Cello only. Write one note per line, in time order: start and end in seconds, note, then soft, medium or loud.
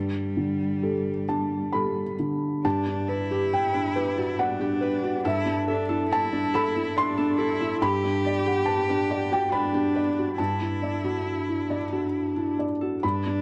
0.00 2.15 G3 medium
2.64 3.10 D4 medium
3.08 4.41 E4 medium
4.40 5.25 D4 medium
5.26 5.67 E4 medium
5.69 6.10 D4 medium
6.11 6.98 E4 medium
6.97 7.39 D4 medium
7.38 7.81 E4 medium
7.81 9.54 G4 loud
9.52 10.38 D4 medium
10.39 12.55 E4 medium
13.02 13.42 D4 medium